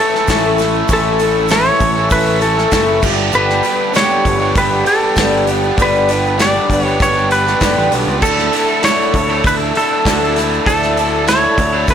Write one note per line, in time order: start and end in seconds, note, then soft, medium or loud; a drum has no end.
0.00 0.28 E3 medium
0.00 0.15 A3 medium
0.00 0.14 C#4 medium
0.00 0.20 E4 medium
0.00 0.29 E4 soft
0.00 0.20 A4 medium
0.00 0.28 A4 soft
0.00 0.56 A4 medium
0.00 3.00 A4 medium
0.00 0.13 A4 medium
0.00 0.20 C#5 medium
0.00 2.99 E5 medium
0.00 3.00 C#6 medium
0.14 0.29 A3 medium
0.14 0.30 C#4 medium
0.14 0.30 A4 medium
0.14 snare soft
0.28 0.82 A1 medium
0.28 0.74 A2 medium
0.28 0.58 E3 medium
0.28 0.46 A3 loud
0.28 0.45 C#4 loud
0.28 0.81 E4 medium
0.28 0.60 E4 medium
0.28 0.81 A4 medium
0.28 0.43 A4 loud
0.28 0.81 C#5 medium
0.28 kick medium
0.28 snare loud
0.28 open hi-hat medium
0.28 shaker loud
0.43 0.60 C#4 medium
0.43 0.61 A4 medium
0.43 shaker soft
0.47 0.59 A3 medium
0.58 0.89 E3 medium
0.58 0.89 A3 medium
0.58 0.90 C#4 medium
0.58 0.90 E4 soft
0.58 0.90 A4 medium
0.58 snare soft
0.58 open hi-hat medium
0.58 shaker medium
0.73 shaker soft
0.88 1.69 A1 loud
0.88 1.49 A2 medium
0.88 1.19 E3 medium
0.88 1.21 A3 medium
0.88 1.21 C#4 loud
0.88 1.42 E4 medium
0.88 1.20 E4 medium
0.88 1.42 A4 medium
0.88 1.22 A4 medium
0.88 1.43 C#5 loud
0.88 kick loud
0.88 open hi-hat medium
0.88 shaker loud
0.93 1.48 A4 medium
1.19 1.49 E3 medium
1.19 1.50 A3 medium
1.19 1.51 C#4 medium
1.19 1.51 E4 soft
1.19 open hi-hat medium
1.19 shaker medium
1.23 1.52 A4 medium
1.48 1.96 A2 medium
1.48 1.79 E3 loud
1.48 1.66 A3 loud
1.48 2.04 E4 medium
1.48 1.82 E4 medium
1.48 2.03 A4 medium
1.48 2.03 B4 medium
1.48 2.14 C#5 loud
1.48 snare loud
1.48 open hi-hat medium
1.48 shaker loud
1.52 1.65 C#4 loud
1.52 1.64 A4 loud
1.65 1.79 A3 medium
1.65 1.80 C#4 medium
1.65 1.80 A4 medium
1.65 shaker soft
1.80 2.07 A1 loud
1.80 2.11 C#4 soft
1.80 2.12 E4 medium
1.80 2.12 A4 medium
1.80 muted overdriven electric guitar stroke soft
1.80 kick medium
1.80 open hi-hat medium
1.80 shaker medium
1.96 2.27 A3 medium
1.96 2.26 C#4 medium
1.96 2.25 A4 medium
2.10 2.65 A1 medium
2.10 2.42 A3 medium
2.10 2.43 C#4 medium
2.10 2.65 E4 medium
2.10 2.42 E4 medium
2.10 2.65 A4 medium
2.10 2.40 A4 medium
2.10 2.40 B4 medium
2.10 2.65 C#5 medium
2.10 kick loud
2.10 open hi-hat medium
2.10 shaker loud
2.26 2.41 A3 medium
2.26 2.42 C#4 medium
2.26 2.44 A4 medium
2.41 2.71 E3 medium
2.41 2.58 A3 medium
2.41 2.57 C#4 medium
2.41 2.72 E4 soft
2.41 2.99 A4 medium
2.41 2.55 A4 medium
2.41 open hi-hat medium
2.41 shaker medium
2.56 2.72 A3 medium
2.56 2.72 C#4 medium
2.56 2.73 A4 medium
2.56 snare soft
2.71 2.99 F#1 medium
2.71 3.01 A2 loud
2.71 3.01 E3 loud
2.71 2.89 A3 loud
2.71 2.88 C#4 loud
2.71 3.03 E4 medium
2.71 3.04 E4 medium
2.71 3.04 A4 medium
2.71 2.86 A4 loud
2.71 3.04 C#5 medium
2.71 kick medium
2.71 snare loud
2.71 open hi-hat medium
2.71 shaker medium
2.87 3.02 A3 medium
2.87 3.02 C#4 medium
2.87 3.01 A4 medium
2.87 shaker soft
3.02 3.30 G1 medium
3.02 3.32 G2 medium
3.02 3.32 D3 medium
3.02 3.34 G3 loud
3.02 3.34 B3 medium
3.02 3.34 D4 loud
3.02 3.84 D4 medium
3.02 3.84 G4 medium
3.02 3.35 G4 loud
3.02 8.18 B4 medium
3.02 3.84 B4 medium
3.02 5.45 G5 medium
3.02 kick loud
3.02 snare soft
3.02 crash loud
3.02 shaker medium
3.17 shaker soft
3.32 3.60 G1 loud
3.32 3.93 G2 medium
3.32 3.93 D3 medium
3.32 3.62 G3 medium
3.32 3.63 B3 loud
3.32 3.64 D4 loud
3.32 3.65 G4 medium
3.32 3.96 B4 medium
3.32 shaker medium
3.50 snare soft
3.63 3.94 G3 medium
3.63 3.95 B3 medium
3.63 3.95 D4 medium
3.63 3.96 G4 medium
3.63 open hi-hat medium
3.63 shaker medium
3.67 3.94 G3 soft
3.93 5.15 G2 loud
3.93 4.40 D3 medium
3.93 4.12 G3 loud
3.93 4.11 B3 loud
3.93 4.48 D4 medium
3.93 4.10 D4 loud
3.93 4.09 G4 loud
3.93 4.48 G4 medium
3.93 4.48 B4 medium
3.93 4.59 C#5 loud
3.93 snare loud
3.93 open hi-hat medium
3.93 shaker medium
4.10 4.24 G3 medium
4.10 4.24 B3 medium
4.10 4.25 D4 medium
4.10 4.25 G4 medium
4.10 shaker soft
4.25 4.52 G1 medium
4.25 4.55 G3 soft
4.25 4.56 B3 medium
4.25 4.57 D4 medium
4.25 4.56 G4 medium
4.25 muted overdriven electric guitar stroke soft
4.25 kick medium
4.25 open hi-hat medium
4.25 shaker medium
4.40 4.72 G3 medium
4.40 4.72 B3 medium
4.40 4.71 D4 medium
4.40 4.69 G4 medium
4.55 4.82 G1 loud
4.55 4.86 G3 medium
4.55 4.87 B3 medium
4.55 5.09 D4 medium
4.55 4.86 D4 medium
4.55 5.09 G4 medium
4.55 4.85 G4 medium
4.55 5.09 B4 medium
4.55 4.87 B4 medium
4.55 kick loud
4.55 open hi-hat medium
4.55 shaker loud
4.70 4.85 G3 medium
4.70 4.86 B3 medium
4.70 4.88 D4 medium
4.70 4.88 G4 medium
4.86 5.03 G3 medium
4.86 5.03 B3 medium
4.86 5.03 D4 medium
4.86 5.01 G4 medium
4.86 5.44 A4 medium
4.86 open hi-hat medium
4.86 shaker medium
5.02 5.16 G3 medium
5.02 5.16 B3 medium
5.02 5.18 D4 medium
5.02 5.17 G4 medium
5.16 5.70 G1 medium
5.16 5.62 G2 medium
5.16 5.63 D3 loud
5.16 5.33 G3 loud
5.16 5.33 B3 medium
5.16 5.70 D4 medium
5.16 5.32 D4 loud
5.16 5.70 G4 medium
5.16 5.30 G4 loud
5.16 5.70 A4 medium
5.16 kick medium
5.16 snare loud
5.16 open hi-hat medium
5.16 shaker loud
5.31 5.45 G3 medium
5.31 5.47 B3 medium
5.31 5.48 D4 medium
5.31 5.48 G4 medium
5.31 shaker soft
5.46 5.76 G3 medium
5.46 5.77 B3 medium
5.46 5.78 D4 medium
5.46 5.78 G4 medium
5.46 8.20 F#5 medium
5.46 open hi-hat medium
5.46 shaker medium
5.51 5.79 G3 soft
5.63 shaker soft
5.77 6.58 G1 medium
5.77 6.35 G2 medium
5.77 6.36 D3 loud
5.77 6.06 G3 medium
5.77 6.07 B3 medium
5.77 6.31 D4 loud
5.77 6.09 D4 loud
5.77 6.31 G4 medium
5.77 6.09 G4 loud
5.77 6.31 D5 loud
5.77 kick loud
5.77 open hi-hat medium
5.77 shaker medium
5.82 6.43 B4 loud
5.95 shaker soft
6.07 6.36 G3 medium
6.07 6.37 B3 medium
6.07 6.38 D4 medium
6.07 6.38 G4 medium
6.07 open hi-hat medium
6.07 shaker medium
6.13 6.40 G3 soft
6.26 shaker soft
6.36 6.84 G2 medium
6.36 6.84 D3 loud
6.36 6.55 G3 loud
6.36 6.54 B3 loud
6.36 6.92 D4 medium
6.36 6.54 D4 loud
6.36 6.92 G4 medium
6.36 6.52 G4 loud
6.36 6.92 C#6 medium
6.36 open hi-hat medium
6.36 shaker loud
6.40 6.82 D5 loud
6.40 snare loud
6.53 6.67 G3 medium
6.53 6.68 B3 medium
6.53 6.69 D4 medium
6.53 6.68 G4 medium
6.53 shaker soft
6.69 6.96 G1 loud
6.69 7.01 D4 medium
6.69 7.01 G4 medium
6.69 muted overdriven electric guitar stroke soft
6.69 kick medium
6.69 open hi-hat medium
6.69 shaker medium
6.73 7.00 G3 soft
6.73 7.01 B3 soft
6.82 7.16 D4 medium
6.82 7.14 G4 medium
6.82 6.98 C#5 loud
6.86 7.16 G3 medium
6.86 7.15 B3 medium
6.86 shaker soft
7.00 7.54 G1 medium
7.00 7.31 G3 medium
7.00 7.32 B3 medium
7.00 7.54 D4 medium
7.00 7.30 D4 medium
7.00 7.54 G4 medium
7.00 7.30 G4 medium
7.00 7.54 B4 medium
7.00 7.32 C#5 medium
7.00 kick loud
7.00 open hi-hat medium
7.00 shaker loud
7.15 7.29 G3 medium
7.15 7.30 B3 medium
7.15 7.32 D4 medium
7.15 7.31 G4 medium
7.15 shaker soft
7.30 7.46 G3 medium
7.30 7.45 B3 medium
7.30 7.45 D4 medium
7.30 7.43 G4 medium
7.30 7.89 B4 medium
7.30 open hi-hat medium
7.30 shaker medium
7.45 7.61 G3 medium
7.45 7.61 B3 medium
7.45 7.62 D4 medium
7.45 7.62 G4 medium
7.45 snare soft
7.45 shaker soft
7.60 7.75 G1 medium
7.60 8.07 G2 medium
7.60 8.07 D3 medium
7.60 7.77 G3 loud
7.60 7.76 B3 loud
7.60 7.77 D4 loud
7.60 8.15 D4 medium
7.60 8.15 G4 medium
7.60 7.75 G4 loud
7.60 8.15 D5 medium
7.60 kick medium
7.60 snare loud
7.60 open hi-hat medium
7.60 shaker loud
7.76 7.91 A1 medium
7.76 7.90 G3 medium
7.76 7.90 B3 medium
7.76 7.92 D4 medium
7.76 7.93 G4 medium
7.91 8.06 B1 medium
7.91 8.20 G3 medium
7.91 8.21 B3 medium
7.91 8.23 D4 medium
7.91 8.22 G4 medium
7.91 open hi-hat medium
7.91 shaker medium
8.07 8.21 C#2 medium
8.07 shaker soft
8.21 8.49 D2 loud
8.21 8.51 D3 medium
8.21 8.52 A3 medium
8.21 8.75 D4 medium
8.21 8.53 D4 medium
8.21 8.76 E4 medium
8.21 8.54 E4 medium
8.21 8.84 A4 medium
8.21 11.94 A4 medium
8.21 8.75 A4 loud
8.21 11.94 E5 medium
8.21 11.94 A5 medium
8.21 kick loud
8.21 crash loud
8.21 shaker loud
8.39 snare soft
8.52 8.82 D3 medium
8.52 8.83 A3 medium
8.52 8.84 D4 medium
8.52 8.85 E4 medium
8.52 open hi-hat medium
8.56 8.84 A3 soft
8.56 shaker medium
8.82 9.13 D3 medium
8.82 9.01 A3 loud
8.82 9.36 D4 medium
8.82 9.00 D4 loud
8.82 9.36 E4 medium
8.82 8.99 E4 loud
8.82 9.36 A4 medium
8.82 9.46 C#5 loud
8.82 snare loud
8.82 open hi-hat medium
8.82 shaker loud
8.99 9.13 A3 medium
8.99 9.14 D4 medium
8.99 9.15 E4 medium
8.99 shaker soft
9.14 9.41 D2 medium
9.14 9.44 A3 soft
9.14 9.45 D4 medium
9.14 9.44 E4 medium
9.14 muted overdriven electric guitar stroke soft
9.14 kick medium
9.14 open hi-hat medium
9.14 shaker medium
9.30 9.61 A3 medium
9.30 9.60 D4 medium
9.30 9.59 E4 medium
9.44 9.71 D2 loud
9.44 9.75 D3 medium
9.44 9.98 D4 medium
9.44 9.76 D4 medium
9.44 9.98 E4 medium
9.44 9.74 E4 medium
9.44 9.98 A4 medium
9.44 9.55 B4 medium
9.44 kick loud
9.44 open hi-hat medium
9.44 shaker loud
9.60 9.75 A3 medium
9.60 9.76 D4 medium
9.60 9.78 E4 medium
9.75 10.04 D3 medium
9.75 9.91 A3 medium
9.75 9.90 D4 medium
9.75 9.89 E4 medium
9.75 10.33 A4 medium
9.75 open hi-hat medium
9.75 shaker medium
9.89 10.05 A3 medium
9.89 10.06 D4 medium
9.89 10.08 E4 medium
10.05 10.59 D2 medium
10.05 10.33 D3 medium
10.05 10.22 A3 medium
10.05 10.58 D4 medium
10.05 10.21 D4 loud
10.05 10.58 E4 medium
10.05 10.20 E4 medium
10.05 10.58 F#4 medium
10.05 kick medium
10.05 snare loud
10.05 open hi-hat medium
10.05 shaker loud
10.21 10.35 A3 medium
10.21 10.36 D4 medium
10.21 10.37 E4 medium
10.21 shaker soft
10.35 10.64 D3 medium
10.35 10.65 A3 medium
10.35 10.66 D4 medium
10.35 10.67 E4 medium
10.35 snare soft
10.35 open hi-hat medium
10.39 10.67 A3 soft
10.39 shaker medium
10.54 shaker soft
10.65 11.46 D2 loud
10.65 10.95 D3 medium
10.65 10.96 A3 medium
10.65 10.97 D4 medium
10.65 11.20 D4 medium
10.65 11.20 E4 medium
10.65 10.99 E4 medium
10.65 11.24 A4 medium
10.65 11.20 A4 loud
10.65 kick loud
10.65 open hi-hat medium
10.65 shaker loud
10.83 snare soft
10.96 11.25 D3 medium
10.96 11.26 A3 medium
10.96 11.28 D4 medium
10.96 11.29 E4 medium
10.96 open hi-hat medium
10.96 shaker medium
11.27 11.57 D3 loud
11.27 11.43 A3 loud
11.27 11.81 D4 medium
11.27 11.42 D4 loud
11.27 11.81 E4 medium
11.27 11.41 E4 loud
11.27 11.80 A4 medium
11.27 11.90 C#5 loud
11.27 snare loud
11.27 open hi-hat medium
11.27 shaker loud
11.41 11.58 A3 medium
11.41 11.58 D4 medium
11.41 11.59 E4 medium
11.41 shaker soft
11.58 11.85 D2 loud
11.58 11.89 A3 soft
11.58 11.89 D4 medium
11.58 muted overdriven electric guitar stroke soft
11.58 kick medium
11.58 open hi-hat medium
11.58 shaker medium
11.73 11.94 A3 medium
11.73 11.94 D4 medium
11.73 11.94 E4 medium
11.88 11.94 D2 medium
11.88 11.94 D3 medium
11.88 11.94 A3 medium
11.88 11.94 D4 medium
11.88 11.94 E4 medium
11.88 11.94 A4 medium
11.88 11.94 B4 medium
11.88 kick loud
11.88 open hi-hat medium
11.88 shaker loud